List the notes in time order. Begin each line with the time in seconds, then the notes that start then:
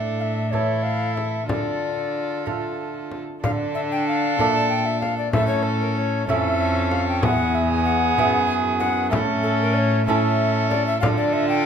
Already playing: A2 A3 D4 A4
0.19 E5 F5
0.51 E3 A3 E4 A4 C#5, frame drum
0.83 F5
1.15 E5, frame drum
1.48 D3 F4 A4 D5, frame drum
2.46 A3 F4 A4, frame drum
3.12 frame drum
3.43 D3 D4 A4 F5, frame drum
3.75 E5
3.92 G5
4.08 F5
4.39 A#2 A3 D4 A4, frame drum
4.54 A5
4.69 G5
4.86 E5
5.01 F5, frame drum
5.18 D5
5.33 A2 C#4 A4 E5, frame drum
5.47 C#5
5.63 A4
5.81 A#4
5.96 C#5
6.27 F2 C#4 E4 A4 E5, frame drum
6.91 F5, frame drum
7.08 G5
7.22 E2 B3 G#4 F#5, frame drum
7.55 E5
7.71 G#5
7.85 F#5
8.18 F#2 B3 E4 G#4, frame drum
8.47 G#5
8.80 F#5, frame drum
9.11 A2 C#4 A4 E5, frame drum
9.43 A4
9.62 A#4
9.74 D5
9.79 C#5
10.05 C#4 E4 A4 E5, frame drum
10.10 A4
10.70 D5, frame drum
10.87 E5
11.00 D3 F4 A4 F5, frame drum
11.17 D5
11.33 E5
11.49 G5